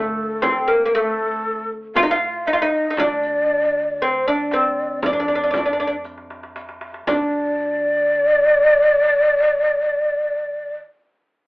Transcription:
0.00 1.95 D2 medium
0.00 0.44 A3 medium
0.00 0.70 A4 medium
0.42 0.69 C4 medium
0.42 riq soft
0.42 darbuka tek medium
0.42 frame drum medium
0.68 0.84 A#3 medium
0.68 0.94 A#4 medium
0.86 0.93 A#3 medium
0.94 1.67 A3 medium
0.94 1.00 A#4 medium
0.99 1.71 A4 medium
1.95 2.94 A1 medium
1.95 2.02 F4 loud
1.95 2.09 F5 medium
1.95 riq medium
1.95 darbuka dum medium
1.95 frame drum medium
2.03 2.10 D#4 medium
2.10 2.47 F4 medium
2.10 2.49 F5 medium
2.47 2.53 D#4 medium
2.47 2.61 D#5 medium
2.47 riq soft
2.47 darbuka ka soft
2.53 2.61 F4 medium
2.61 2.89 D#4 medium
2.61 2.99 D#5 medium
2.90 2.98 D#4 medium
2.97 4.98 D2 medium
2.97 3.97 D4 medium
2.97 3.05 D#5 medium
2.97 riq soft
2.97 darbuka tek medium
2.97 frame drum medium
3.04 4.01 D5 medium
3.23 riq soft
3.23 darbuka ka soft
3.75 darbuka ka soft
4.01 4.27 C4 medium
4.01 4.06 D5 medium
4.05 4.29 C5 medium
4.27 4.53 D4 medium
4.27 5.03 D5 medium
4.27 4.32 D#5 medium
4.51 5.05 C4 medium
4.51 riq soft
4.51 darbuka tek medium
5.02 7.03 F2 medium
5.02 5.11 D4 medium
5.02 5.09 D#5 medium
5.02 riq medium
5.02 frame drum medium
5.02 darbuka dum medium
5.08 6.01 D5 medium
5.13 5.19 D4 medium
5.20 5.26 D4 medium
5.28 5.34 D4 soft
5.35 5.41 D4 medium
5.43 5.49 D4 soft
5.51 5.56 D4 medium
5.51 riq soft
5.51 darbuka tek medium
5.51 frame drum medium
5.57 5.64 D4 soft
5.66 5.71 D4 medium
5.73 5.79 D4 soft
5.80 5.86 D4 medium
5.87 5.94 D4 soft
6.04 riq soft
6.04 darbuka tek soft
6.18 darbuka ka medium
6.30 darbuka tek medium
6.43 darbuka ka medium
6.56 riq soft
6.56 darbuka tek medium
6.69 darbuka ka medium
6.81 darbuka tek medium
6.94 darbuka ka medium
7.07 10.75 D2 medium
7.07 10.75 D4 medium
7.07 10.76 D5 medium
7.07 riq medium
7.07 darbuka dum medium
7.07 frame drum medium

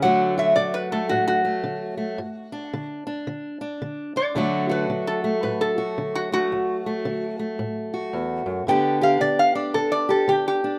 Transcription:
0.02 0.53 D2 medium
0.02 0.56 D3 medium
0.02 2.19 F#3 medium
0.02 0.91 A3 medium
0.02 0.36 F#4 medium
0.02 0.38 F#5 medium
0.38 2.17 F#4 medium
0.38 0.55 E5 medium
0.56 1.07 D3 medium
0.56 0.74 D5 medium
0.74 0.92 B4 medium
0.92 1.43 A3 medium
0.92 1.09 A4 medium
1.09 1.61 A2 medium
1.09 1.26 F#4 medium
1.28 2.86 F#4 medium
1.45 1.96 A3 medium
1.64 2.14 D3 medium
1.97 2.19 A3 medium
2.18 2.69 G2 medium
2.52 3.06 D4 medium
2.74 3.23 D3 medium
3.07 3.61 D4 medium
3.27 3.77 D3 medium
3.61 4.16 D4 medium
3.82 4.31 D3 medium
4.16 4.37 D4 medium
4.16 4.69 D5 medium
4.35 4.85 D2 medium
4.35 4.89 D3 medium
4.35 8.68 F#3 medium
4.35 5.24 A3 medium
4.35 4.69 F#4 medium
4.69 5.77 F#4 medium
4.69 5.06 B4 medium
4.90 5.39 D3 medium
5.07 5.42 A4 medium
5.24 6.31 A3 medium
5.43 5.93 A2 medium
5.43 5.61 B4 medium
5.61 6.13 A4 medium
5.78 6.49 F#4 medium
5.98 6.47 D3 medium
6.15 6.32 F#4 medium
6.32 6.85 A3 medium
6.32 7.38 F#4 medium
6.52 7.02 D2 medium
6.86 7.38 A3 medium
7.05 7.55 D3 medium
7.39 8.68 A3 medium
7.59 8.09 A2 medium
7.94 8.65 F#4 medium
8.13 8.46 E2 medium
8.46 8.66 F#2 medium
8.67 9.17 G2 medium
8.67 9.20 D3 medium
8.67 10.79 B3 medium
8.67 9.55 D4 medium
8.67 9.01 G4 medium
8.67 9.03 G5 medium
9.01 10.08 G4 medium
9.01 9.21 F5 medium
9.21 9.71 D3 medium
9.21 9.39 D5 medium
9.39 9.55 F5 medium
9.55 10.64 D4 medium
9.55 9.74 D5 medium
9.74 10.25 D3 medium
9.74 9.92 A4 medium
9.92 10.10 D5 medium
10.09 10.79 G4 medium
10.09 10.28 A4 medium
10.28 10.78 D3 medium
10.28 10.47 G4 medium
10.48 10.79 G4 loud
10.64 10.79 D4 medium

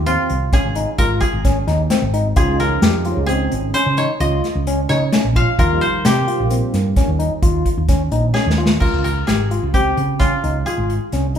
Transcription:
0.00 0.16 D#2 medium
0.00 0.59 G4 medium
0.06 0.33 C4 medium
0.06 2.25 F4 medium
0.06 closed hi-hat medium
0.29 0.50 C2 medium
0.29 closed hi-hat medium
0.53 0.66 C#4 medium
0.53 1.20 G#4 medium
0.53 kick loud
0.53 snare soft
0.53 closed hi-hat medium
0.65 0.85 G#1 medium
0.75 0.89 D#4 medium
0.75 closed hi-hat medium
0.98 1.19 G#1 medium
0.98 1.25 F4 medium
0.98 1.05 A#4 medium
0.98 kick medium
0.98 closed hi-hat medium
1.20 2.36 G#4 medium
1.20 kick medium
1.20 closed hi-hat medium
1.33 1.63 G#1 medium
1.45 1.58 C#4 medium
1.45 kick medium
1.45 snare soft
1.45 closed hi-hat medium
1.67 1.88 D#2 loud
1.67 1.81 D#4 medium
1.67 snare soft
1.67 closed hi-hat medium
1.90 2.04 C4 medium
1.90 snare loud
1.90 closed hi-hat medium
2.02 2.32 G#1 medium
2.14 2.27 D#4 medium
2.14 closed hi-hat medium
2.36 2.77 C#2 loud
2.36 2.53 F3 medium
2.36 2.53 G#3 medium
2.36 2.53 C#4 medium
2.36 2.53 D#4 medium
2.36 2.62 F4 medium
2.36 3.26 G#4 medium
2.36 kick loud
2.36 closed hi-hat medium
2.60 4.44 A#4 medium
2.60 snare soft
2.60 closed hi-hat medium
2.82 3.12 F2 medium
2.82 2.96 G4 medium
2.82 snare loud
2.82 closed hi-hat medium
3.05 3.21 F3 medium
3.05 3.22 G#3 medium
3.05 3.22 C#4 medium
3.05 3.22 D#4 medium
3.05 3.19 F4 medium
3.05 closed hi-hat medium
3.17 3.47 C#2 medium
3.26 3.55 C4 medium
3.26 5.23 G#4 medium
3.26 closed hi-hat medium
3.52 3.72 G#1 medium
3.52 closed hi-hat medium
3.74 3.88 C#4 medium
3.74 4.04 C5 medium
3.74 snare soft
3.74 closed hi-hat medium
3.86 4.06 C#3 medium
3.97 4.11 D#4 medium
3.97 4.89 C#5 medium
3.97 closed hi-hat medium
4.20 4.41 C#2 loud
4.20 4.47 F4 medium
4.20 5.75 D#5 medium
4.20 closed hi-hat medium
4.44 snare soft
4.44 closed hi-hat medium
4.55 4.85 C#2 medium
4.67 4.80 C#4 medium
4.67 closed hi-hat medium
4.89 5.10 C#3 medium
4.89 5.03 D#4 medium
4.89 5.87 C#5 medium
4.89 snare soft
4.89 closed hi-hat medium
5.13 5.26 C#4 medium
5.13 snare loud
5.13 closed hi-hat medium
5.25 5.45 A#1 medium
5.36 5.49 F4 medium
5.36 6.80 F5 loud
5.36 kick medium
5.36 closed hi-hat medium
5.58 5.79 D#2 medium
5.58 5.74 F3 medium
5.58 5.74 G3 medium
5.58 5.75 A#3 medium
5.58 5.75 D#4 medium
5.58 5.85 F4 medium
5.58 7.43 A#4 medium
5.58 kick loud
5.58 closed hi-hat medium
5.81 7.53 C5 medium
5.81 closed hi-hat medium
6.05 6.25 C3 loud
6.05 6.18 G4 medium
6.05 8.32 G4 medium
6.05 snare loud
6.05 closed hi-hat medium
6.27 6.44 F3 medium
6.27 6.44 G3 medium
6.27 6.44 A#3 medium
6.27 6.41 F4 medium
6.27 6.44 F4 medium
6.27 closed hi-hat medium
6.40 6.60 A#1 medium
6.50 6.77 C4 medium
6.50 closed hi-hat medium
6.74 6.94 G2 medium
6.74 snare soft
6.74 closed hi-hat medium
6.96 7.10 C#4 medium
6.96 kick loud
6.96 snare soft
6.96 closed hi-hat medium
7.08 7.28 D#2 medium
7.19 7.32 D#4 medium
7.19 closed hi-hat medium
7.42 7.63 D#2 medium
7.42 7.68 F4 medium
7.42 kick loud
7.42 closed hi-hat medium
7.66 kick medium
7.66 closed hi-hat medium
7.78 8.08 D#2 medium
7.88 8.02 C#4 medium
7.88 kick loud
7.88 snare soft
7.88 closed hi-hat medium
8.12 8.32 A#1 medium
8.12 8.25 D#4 medium
8.12 closed hi-hat medium
8.34 8.48 C#4 medium
8.34 9.27 G#4 medium
8.34 snare medium
8.46 8.77 D#2 medium
8.46 snare medium
8.58 8.71 F4 medium
8.66 snare medium
8.80 8.91 C#2 medium
8.80 9.07 F4 medium
8.80 9.04 A#4 medium
8.80 kick loud
8.80 crash medium
8.93 9.23 C#2 medium
9.04 10.88 A#4 medium
9.04 closed hi-hat medium
9.27 9.58 G#1 medium
9.27 9.41 G4 medium
9.27 9.80 G#4 medium
9.27 snare loud
9.27 closed hi-hat medium
9.51 9.64 F4 medium
9.51 closed hi-hat medium
9.63 9.93 C#2 medium
9.74 10.00 C4 medium
9.74 10.72 G4 medium
9.74 kick medium
9.74 closed hi-hat medium
9.97 10.37 C#3 medium
9.97 closed hi-hat medium
10.19 10.33 C#4 medium
10.19 11.39 F4 medium
10.19 kick loud
10.19 snare soft
10.19 closed hi-hat medium
10.44 10.64 C#2 medium
10.44 10.56 D#4 medium
10.44 closed hi-hat medium
10.66 10.93 F4 medium
10.66 11.39 G#4 medium
10.66 closed hi-hat medium
10.78 10.98 G#1 medium
10.90 closed hi-hat medium
11.12 11.39 C2 medium
11.12 11.26 C#4 medium
11.12 snare soft
11.12 closed hi-hat medium
11.35 closed hi-hat medium

